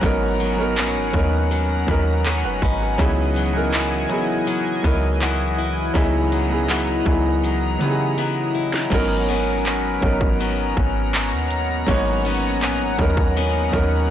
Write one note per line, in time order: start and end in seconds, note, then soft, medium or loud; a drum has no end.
0.00 0.79 G#1 loud
0.00 2.99 G#2 medium
0.00 0.40 F#3 medium
0.00 0.57 F#3 loud
0.00 3.01 A#3 medium
0.00 0.02 B3 medium
0.00 0.77 B3 medium
0.00 2.95 B3 medium
0.00 0.37 B3 medium
0.00 0.03 C#4 medium
0.00 0.78 C#4 medium
0.00 2.95 C#4 medium
0.00 0.37 C#4 loud
0.00 0.04 D#4 medium
0.00 3.01 F#4 medium
0.00 0.05 A#4 medium
0.00 8.88 F#5 medium
0.00 2.95 A#5 medium
0.00 kick loud
0.00 closed hi-hat medium
0.04 0.38 D#4 medium
0.04 0.38 A#4 loud
0.40 0.77 F#3 medium
0.40 closed hi-hat medium
0.57 0.92 F#3 medium
0.57 0.92 B3 medium
0.57 0.93 C#4 medium
0.57 0.93 D#4 medium
0.57 0.94 A#4 medium
0.77 0.98 A#1 loud
0.77 1.51 F#3 medium
0.77 1.88 B3 medium
0.77 2.26 C#4 medium
0.77 clap loud
0.77 closed hi-hat medium
0.96 1.13 G#1 loud
1.13 1.85 D#2 loud
1.13 1.59 F#3 medium
1.13 1.59 B3 medium
1.13 1.60 C#4 medium
1.13 1.60 D#4 medium
1.13 1.61 A#4 medium
1.13 kick medium
1.13 closed hi-hat medium
1.51 2.25 F#3 medium
1.51 closed hi-hat medium
1.87 2.45 D#2 loud
1.87 2.56 F#3 medium
1.87 2.56 B3 medium
1.87 2.25 B3 medium
1.87 2.57 C#4 medium
1.87 2.57 D#4 medium
1.87 2.25 A#4 medium
1.87 kick medium
1.87 closed hi-hat medium
2.25 3.36 F#3 medium
2.25 3.74 B3 medium
2.25 2.62 C#4 medium
2.25 2.43 A#4 medium
2.25 2.43 F#5 medium
2.25 2.43 A#5 medium
2.25 clap loud
2.25 closed hi-hat medium
2.44 2.61 F#1 medium
2.44 2.62 B4 medium
2.44 2.61 F#5 medium
2.44 2.62 G#5 medium
2.62 2.98 G#1 medium
2.62 3.74 C#4 medium
2.62 2.80 D#5 medium
2.62 2.80 B5 medium
2.62 kick medium
2.81 3.16 B4 soft
2.81 3.16 G#5 medium
2.98 4.06 C#2 loud
2.98 5.94 C#3 medium
2.98 8.88 E3 medium
2.98 3.33 F#3 loud
2.98 3.33 B3 medium
2.98 3.34 D#4 medium
2.98 3.34 E4 loud
2.98 3.35 G#4 loud
2.98 8.88 D#5 medium
2.98 5.92 G#5 medium
2.98 kick loud
2.98 closed hi-hat medium
3.36 3.73 F#3 medium
3.36 closed hi-hat medium
3.53 3.88 F#3 medium
3.53 3.89 B3 medium
3.53 3.89 D#4 medium
3.53 3.90 E4 medium
3.53 3.90 A#4 medium
3.73 4.47 F#3 medium
3.73 4.84 B3 medium
3.73 5.21 E4 medium
3.73 clap loud
3.73 closed hi-hat medium
4.09 4.55 F#3 medium
4.09 4.56 B3 medium
4.09 4.56 D#4 medium
4.09 4.57 E4 medium
4.09 4.57 G#4 medium
4.09 closed hi-hat medium
4.47 5.21 F#3 medium
4.47 closed hi-hat medium
4.83 5.91 C#2 loud
4.83 5.52 F#3 medium
4.83 5.52 B3 medium
4.83 5.21 B3 medium
4.83 5.53 D#4 medium
4.83 5.53 E4 medium
4.83 5.54 A#4 medium
4.83 kick medium
4.83 closed hi-hat medium
5.21 6.32 F#3 medium
5.21 6.69 B3 medium
5.21 5.57 E4 medium
5.21 clap loud
5.21 closed hi-hat medium
5.58 6.69 E4 medium
5.94 7.02 C#2 loud
5.94 8.92 C#3 medium
5.94 6.29 F#3 loud
5.94 6.29 B3 medium
5.94 6.30 D#4 loud
5.94 6.30 E4 loud
5.94 6.31 G#4 loud
5.94 8.89 A#5 medium
5.94 kick loud
5.94 closed hi-hat medium
6.32 6.69 F#3 medium
6.32 closed hi-hat medium
6.49 6.84 F#3 medium
6.49 6.85 B3 medium
6.49 6.85 D#4 medium
6.49 6.86 E4 medium
6.49 6.86 G#4 medium
6.69 7.43 F#3 medium
6.69 7.80 B3 medium
6.69 8.17 E4 medium
6.69 clap loud
6.69 closed hi-hat medium
7.05 7.78 C#2 loud
7.05 7.51 F#3 medium
7.05 7.52 B3 medium
7.05 7.52 D#4 medium
7.05 7.53 E4 medium
7.05 7.53 G#4 medium
7.05 kick medium
7.05 closed hi-hat medium
7.43 8.17 F#3 medium
7.43 closed hi-hat medium
7.79 8.88 C#3 loud
7.79 8.48 F#3 medium
7.79 8.49 B3 medium
7.79 8.18 B3 medium
7.79 8.49 D#4 medium
7.79 8.50 E4 medium
7.79 7.88 G4 medium
7.79 closed hi-hat medium
7.90 8.53 G#4 medium
8.18 9.28 F#3 medium
8.18 9.29 B3 medium
8.18 8.53 E4 medium
8.18 closed hi-hat medium
8.54 8.92 E4 medium
8.74 snare medium
8.90 9.99 G#1 loud
8.90 11.87 G#2 medium
8.90 9.59 F#3 loud
8.90 9.60 B3 medium
8.90 14.10 B3 medium
8.90 14.10 C#4 medium
8.90 9.30 C#4 medium
8.90 9.60 C#4 medium
8.90 9.61 D#4 medium
8.90 14.10 F#5 medium
8.90 14.10 A#5 medium
8.90 kick loud
8.90 closed hi-hat medium
8.90 crash medium
8.94 9.61 A#4 loud
9.29 10.39 F#3 medium
9.29 9.65 B3 medium
9.29 10.41 C#4 medium
9.29 closed hi-hat medium
9.66 10.40 B3 medium
9.66 clap loud
9.66 closed hi-hat medium
10.01 10.74 G#1 loud
10.01 10.93 F#3 medium
10.01 10.93 B3 medium
10.01 10.94 C#4 medium
10.01 10.95 D#4 medium
10.01 10.95 A#4 medium
10.01 kick medium
10.01 closed hi-hat medium
10.21 kick loud
10.40 11.13 F#3 medium
10.40 12.25 B3 medium
10.40 11.88 C#4 medium
10.40 closed hi-hat medium
10.77 11.34 G#1 loud
10.77 kick medium
10.77 closed hi-hat medium
11.14 12.25 F#3 medium
11.14 clap loud
11.14 closed hi-hat medium
11.33 11.85 D#2 medium
11.51 closed hi-hat medium
11.87 12.64 G#1 loud
11.87 14.10 G#2 medium
11.87 12.56 F#3 loud
11.87 11.94 A#3 medium
11.87 12.57 C#4 medium
11.87 12.26 C#4 medium
11.87 12.57 D#4 loud
11.87 12.58 C#5 loud
11.87 kick loud
11.87 closed hi-hat medium
11.94 12.59 B3 medium
12.25 13.36 F#3 medium
12.25 12.62 B3 medium
12.25 13.37 C#4 medium
12.25 closed hi-hat medium
12.62 12.83 A#1 loud
12.62 13.36 B3 medium
12.62 clap loud
12.62 closed hi-hat medium
12.81 12.98 G#1 loud
12.98 13.70 D#2 loud
12.98 13.44 F#3 medium
12.98 13.44 B3 medium
12.98 13.45 C#4 medium
12.98 13.45 D#4 medium
12.98 13.46 A#4 medium
12.98 kick medium
12.98 closed hi-hat medium
13.17 kick loud
13.36 14.10 F#3 medium
13.36 14.10 B3 medium
13.36 14.10 C#4 medium
13.36 closed hi-hat medium
13.71 14.10 D#2 loud
13.71 14.10 F#3 medium
13.71 14.10 B3 medium
13.71 14.10 C#4 medium
13.71 14.10 D#4 medium
13.71 14.10 A#4 medium
13.71 kick medium
13.71 closed hi-hat medium